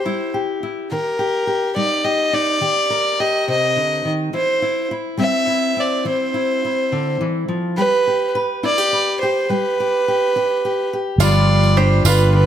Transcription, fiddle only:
0.00 0.33 C5 medium
0.91 1.73 A#4 medium
1.77 2.06 D5 medium
2.04 2.35 D#5 medium
2.34 3.21 D5 medium
3.20 3.48 D#5 medium
3.50 4.09 D#5 medium
4.35 4.88 C5 medium
5.20 5.82 E5 medium
5.80 6.07 D5 medium
6.09 7.18 C5 medium
7.78 8.31 B4 medium
8.65 9.17 D5 medium
9.21 9.51 C5 medium
9.50 10.92 B4 medium
11.21 11.79 D5 medium
11.77 12.06 C5 medium
12.07 12.33 B4 medium
12.35 12.46 B4 medium

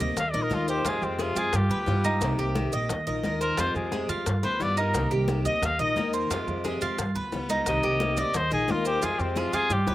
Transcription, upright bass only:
0.00 0.16 D2 medium
0.17 0.33 D#2 loud
0.34 0.50 A#1 medium
0.51 0.83 D#2 loud
0.85 1.01 F2 loud
1.02 1.34 F2 loud
1.36 1.52 F#2 medium
1.53 1.69 G2 loud
1.70 1.86 D2 medium
1.87 2.20 G2 loud
2.21 2.37 C2 medium
2.38 2.71 C2 medium
2.72 2.89 A#1 medium
2.89 3.06 D#2 loud
3.07 3.23 A#1 medium
3.24 3.56 D#2 loud
3.58 3.74 F2 loud
3.75 4.07 F2 medium
4.08 4.25 F2 medium
4.26 4.42 G2 loud
4.43 4.59 D2 medium
4.60 4.92 G2 loud
4.94 5.10 C2 loud
5.11 5.43 C2 medium
5.45 5.61 D2 medium
5.62 5.78 D#2 loud
5.79 5.95 A#1 medium
5.96 6.28 D#2 loud
6.30 6.46 F2 loud
6.47 6.80 F2 loud
6.81 6.97 F2 medium
6.98 7.14 G2 loud
7.15 7.31 D2 medium
7.32 7.65 C#2 loud
7.67 7.83 C2 medium
7.84 8.16 C2 medium
8.17 8.34 D2 medium
8.35 8.51 D#2 loud
8.51 8.68 A#1 medium
8.69 9.01 D#2 loud
9.03 9.19 F2 medium
9.19 9.52 F2 loud
9.53 9.69 F2 medium
9.70 9.86 G2 loud
9.87 9.95 D2 medium

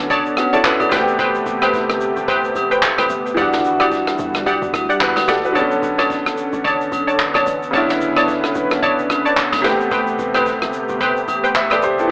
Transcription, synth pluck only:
0.10 0.22 C#5 loud
0.10 0.22 D5 medium
0.10 0.22 A5 loud
0.53 0.62 C#5 medium
0.53 0.62 D5 medium
0.53 0.62 A5 medium
0.92 1.04 B4 medium
0.92 1.04 C5 medium
0.92 1.04 G5 medium
1.19 1.31 B4 medium
1.19 1.31 C5 medium
1.19 1.31 G5 loud
1.62 1.71 B4 medium
1.62 1.71 C5 medium
1.62 1.71 G5 medium
2.28 2.40 B4 medium
2.28 2.40 C5 medium
2.28 2.40 G5 loud
2.71 2.80 B4 medium
2.71 2.80 C5 medium
2.71 2.80 G5 medium
2.98 3.07 B4 medium
2.98 3.07 C5 medium
2.98 3.08 G5 medium
3.37 3.49 G4 medium
3.37 3.49 D5 medium
3.37 3.50 F#5 loud
3.80 3.89 G4 medium
3.80 3.89 D5 medium
3.80 3.89 F#5 medium
4.46 4.58 G4 loud
4.46 4.59 D5 medium
4.46 4.59 F#5 loud
4.89 4.98 G4 medium
4.89 4.98 D5 medium
4.89 4.98 F#5 medium
5.28 5.40 G4 medium
5.28 5.40 D5 medium
5.28 5.40 F#5 medium
5.55 5.67 C#5 medium
5.55 5.68 D5 medium
5.55 5.68 A5 loud
5.98 6.07 C#5 medium
5.98 6.07 D5 medium
5.98 6.08 A5 medium
6.64 6.77 C#5 loud
6.64 6.77 D5 medium
6.64 6.77 A5 loud
7.07 7.16 C#5 medium
7.07 7.16 D5 medium
7.07 7.17 A5 medium
7.35 7.44 C#5 medium
7.35 7.44 D5 medium
7.35 7.44 A5 medium
7.73 7.86 C#5 medium
7.73 7.86 D5 medium
7.73 7.86 A5 loud
8.16 8.25 C#5 medium
8.16 8.26 D5 medium
8.16 8.26 A5 medium
8.82 8.95 C#5 loud
8.82 8.95 D5 medium
8.82 8.95 A5 loud
9.25 9.34 C#5 medium
9.25 9.35 D5 medium
9.25 9.35 A5 medium
9.64 9.76 B4 medium
9.64 9.77 C5 medium
9.64 9.77 G5 medium
9.91 10.04 B4 medium
9.91 10.04 C5 medium
9.91 10.04 G5 loud
10.35 10.44 B4 medium
10.35 10.44 C5 medium
10.35 10.44 G5 medium
11.01 11.13 B4 loud
11.01 11.13 C5 medium
11.01 11.13 G5 loud
11.44 11.53 B4 medium
11.44 11.53 C5 medium
11.44 11.53 G5 medium
11.71 11.80 B4 medium
11.71 11.80 C5 medium
11.71 11.80 G5 medium

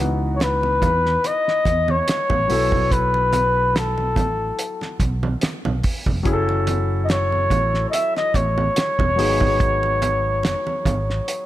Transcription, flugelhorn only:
0.36 0.45 C#5 medium
0.43 1.28 B4 medium
1.27 1.92 D#5 loud
1.91 2.94 C#5 medium
2.93 3.80 B4 medium
3.78 5.02 A4 medium
7.05 7.12 D#5 medium
7.11 7.89 C#5 loud
7.90 7.95 D#5 medium
7.90 8.16 E5 medium
8.17 8.38 D#5 medium
8.36 11.46 C#5 loud

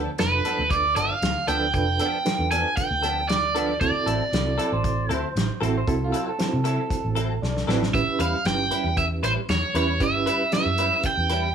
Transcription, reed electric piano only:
0.19 0.98 D4 medium
0.19 0.98 F4 medium
0.19 0.98 A4 medium
0.19 0.98 B4 medium
1.48 1.68 D4 medium
1.48 1.68 F4 medium
1.48 1.68 A4 medium
1.48 1.68 B4 medium
1.73 2.14 D4 medium
1.73 2.14 F4 medium
1.73 2.14 A4 medium
1.73 2.14 B4 medium
2.25 3.04 D4 medium
2.25 3.04 F4 medium
2.25 3.04 A4 medium
2.25 3.04 B4 medium
3.55 3.75 D4 medium
3.55 3.75 F4 medium
3.55 3.75 A4 medium
3.55 3.75 B4 medium
3.81 4.21 C4 medium
3.81 4.21 E4 medium
3.81 4.21 F#4 medium
3.81 4.21 A4 medium
4.34 5.12 C4 medium
4.34 5.12 E4 medium
4.34 5.12 F#4 medium
4.34 5.12 A4 medium
5.61 5.81 C4 loud
5.61 5.81 E4 medium
5.61 5.81 F#4 medium
5.61 5.81 A4 loud
5.87 6.27 C4 medium
5.87 6.28 E4 medium
5.87 6.27 F#4 medium
5.87 6.28 A4 loud
6.39 7.18 C4 medium
6.39 7.18 E4 medium
6.39 7.18 F#4 medium
6.39 7.18 C5 medium
7.42 7.90 D5 medium
7.69 7.88 C4 medium
7.69 7.88 E4 medium
7.69 7.88 F#4 medium
7.69 7.88 B4 medium
7.94 8.34 C#4 medium
7.94 8.34 E4 medium
7.94 8.34 G4 medium
7.94 8.34 B4 medium
8.46 9.25 C#4 medium
8.46 9.25 E4 medium
8.46 9.25 G4 medium
8.46 9.25 B4 medium
9.74 9.94 C#4 medium
9.74 9.95 E4 medium
9.74 9.95 G4 medium
9.74 9.95 B4 medium
10.00 10.40 C#4 medium
10.00 10.41 E4 medium
10.00 10.41 G4 medium
10.00 10.41 B4 medium
10.51 11.31 C#4 medium
10.51 11.31 E4 medium
10.51 11.31 G4 medium
10.51 11.31 B4 medium

